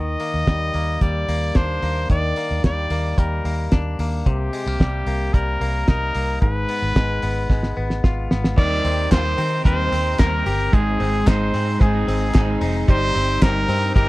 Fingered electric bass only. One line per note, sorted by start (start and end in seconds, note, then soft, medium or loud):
0.00 0.15 D#2 loud
0.34 0.45 D#2 medium
0.47 0.70 D#2 medium
0.74 0.97 D#2 medium
1.01 1.24 D#2 medium
1.28 1.51 D#2 medium
1.56 1.78 D#2 medium
1.83 2.05 D#2 medium
2.10 2.32 D#2 loud
2.51 2.62 D#2 medium
2.64 2.86 D#2 medium
2.90 3.13 D#2 medium
3.18 3.40 D#2 medium
3.45 3.67 D#2 medium
3.72 3.94 D#2 medium
3.99 4.21 D#2 medium
4.26 4.48 C2 medium
4.66 4.78 C2 medium
4.80 5.02 C2 medium
5.07 5.29 C2 medium
5.34 5.56 C2 loud
5.61 5.83 C2 medium
5.88 6.10 C2 medium
6.15 6.37 C2 medium
6.42 6.64 G#1 medium
6.82 6.94 G#1 medium
6.96 7.18 G#1 medium
7.23 7.45 G#1 medium
7.49 7.72 G#1 loud
7.77 7.99 G#1 medium
8.04 8.26 G#1 medium
8.31 8.53 G#1 medium
8.58 8.80 D#2 loud
8.85 9.07 D#2 medium
9.12 9.34 D#2 medium
9.38 9.60 D#3 medium
9.65 9.88 D#2 loud
9.92 10.14 D#2 medium
10.20 10.42 D#2 loud
10.46 10.68 G1 medium
10.73 10.95 G#1 loud
11.00 11.22 G#1 medium
11.27 11.49 G#1 medium
11.54 11.76 G#2 medium
11.81 12.03 G#1 loud
12.08 12.30 G#1 loud
12.35 12.57 G#1 loud
12.61 12.83 F1 medium
12.89 13.11 G1 loud
13.15 13.37 G1 loud
13.42 13.64 G1 loud
13.69 13.91 G2 loud
13.96 14.09 G1 loud